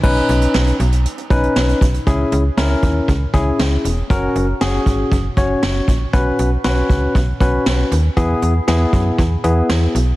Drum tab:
CC |x---------------|----------------|----------------|----------------|
HH |-xxx-xxxxxxx-xxx|x-x-x-x-x-x-x-x-|x-x-x-x-x-x-x-x-|x-x-x-x-x-x-x-x-|
SD |----o-------o---|----o-------o---|----o-------o---|----o-------o---|
BD |o---------o---o-|o-----o-o-o-----|o-----o-o-o---o-|o-----o-o-o-----|

CC |----------------|
HH |x-x-x-x-x-x-x-x-|
SD |----o-------o---|
BD |o-----o-o-------|